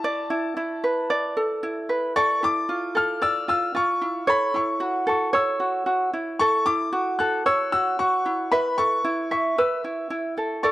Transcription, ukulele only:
Already playing: E4 A4
0.04 D5
0.30 E4
0.57 E4
0.84 B4
1.10 D5
1.37 A4
1.63 E4
1.89 B4
2.16 A4 D5
2.43 E4
2.69 F4
2.95 A4
3.22 D5
3.48 F4
3.75 F4
4.01 E4
4.27 A4 C#5
4.54 E4
4.80 F#4
5.07 A4
5.33 C#5
5.60 F#4
5.86 F#4
6.13 E4
6.41 A4
6.66 E4
6.92 F#4
7.20 A4
7.46 C#5
7.73 F#4
7.99 F#4
8.26 E4
8.52 B4 E5
8.78 A4
9.04 E4
9.31 E5
9.58 B4
9.84 E4
10.10 E4
10.38 A4
10.63 A4 D5

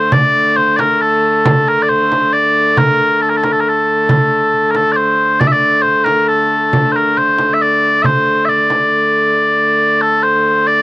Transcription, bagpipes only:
Already playing: C5
0.13 D5
0.56 C5
0.76 A#4 D5
1.01 A4
1.68 A#4
1.82 D5
1.89 C5
2.33 D5
2.78 A#4
3.21 A4
3.29 A#4
3.36 A4
3.44 A#4
3.52 A4
3.60 A#4
3.68 A4
4.71 A#4
4.76 A4
4.92 D5
4.96 C5
5.40 D5
5.47 E5
5.52 D5
5.82 C5
6.04 A#4
6.28 A4
6.92 C5
6.96 A#4
7.17 C5
7.54 E5
7.62 D5
8.02 C5 E5
8.45 D5 E5
10.01 A4
10.23 C5
10.67 D5

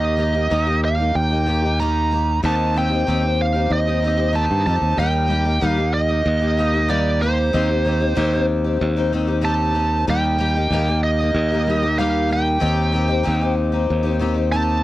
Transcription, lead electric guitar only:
Already playing: D#5
0.85 F5
1.15 G5
1.80 A#5
2.46 A5
2.78 G5
3.42 F5
3.73 D#5
4.36 A5
4.66 A5
4.99 G5
5.68 F5
5.94 D#5
6.90 D5
7.22 C5
9.45 A5
10.10 G5
11.03 D#5
11.99 F5
12.33 G5
14.52 A5

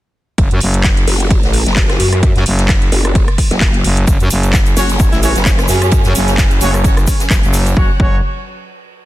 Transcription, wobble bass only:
1.07 F#1
1.43 A1
1.66 F#1
2.00 F#2
2.92 F#1
3.51 F#1
4.77 F#1
5.13 A1
5.36 F#1
5.69 F#2
7.31 F#1

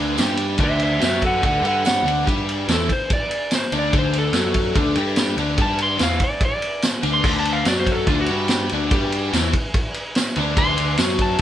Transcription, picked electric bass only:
Already playing: D2
0.18 G2
0.59 D2
1.03 F#2
1.43 D2
1.61 G2
2.03 D2
2.26 G2
2.68 E2
3.72 D2
3.93 D2
4.32 F#2
4.75 D2
4.96 G2
5.36 D2
5.57 G2
6.00 E2
7.03 D2
7.23 D2
7.66 F#2
8.06 D2
8.29 G2
8.72 D2
8.91 G2
9.33 E2
10.37 D2
10.57 D2
10.99 F#2

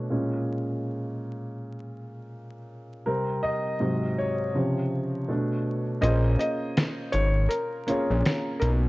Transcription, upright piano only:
Already playing: B2 A3 D4 C#5
0.10 A#2 G#3 C#4
3.06 C3 G3 C4 A#4
3.43 D#5
3.80 G#2 C3 F#3
4.18 C#5
4.54 C3 C#3 F3
5.28 B2 A3 D4
6.01 A#3 C#4 F4 G#4 C5
7.87 A#3 C#4 F4 G#4 C#5

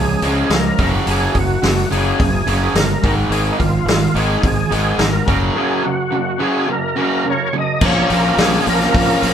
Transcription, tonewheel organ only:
0.00 G#4
0.53 A#4
1.10 G#4
1.38 F#4
1.91 G#4
2.20 G#4
2.76 A#4
3.32 G#4
3.52 D#4
3.59 F4
4.16 G#4
4.45 G#4
4.99 A#4
5.56 G#4
5.84 F#4
6.41 G#4
6.71 A#4
6.97 A#4
7.30 C#5
7.58 D#5
7.86 C#5
8.13 A#4
8.41 G#4
8.69 A#4

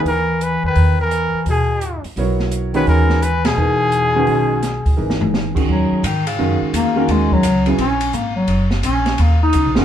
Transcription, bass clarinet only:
0.06 E3
0.44 E3
0.68 D#3
1.02 E3
1.49 B2
2.73 D#3
2.86 E3
3.22 E3
3.45 B2
5.70 F#3
6.05 D#3
6.27 C#3
6.75 A#3
7.12 G#3
7.34 F#3
7.80 C#4
8.15 A#3
8.36 F#3
8.84 C#4
9.21 A#3
9.43 D#4

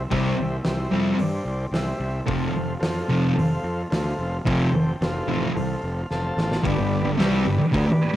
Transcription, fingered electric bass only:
0.12 C2
0.40 C2
0.67 C2
0.93 F2
1.19 G2
1.45 C2
1.71 C2
2.00 C2
2.29 F1
2.54 F1
2.81 F2
3.09 F1
3.37 F1
3.63 F2
3.92 D2
4.19 F1
4.47 F1
4.73 F1
5.01 F1
5.28 A1
5.55 C2
5.83 F1
6.11 F1
6.37 A1
6.66 G1
6.78 G1
7.05 G1
7.19 C2
7.47 G1
7.60 muted fingered electric bass stroke
7.74 D2
7.87 muted fingered electric bass stroke

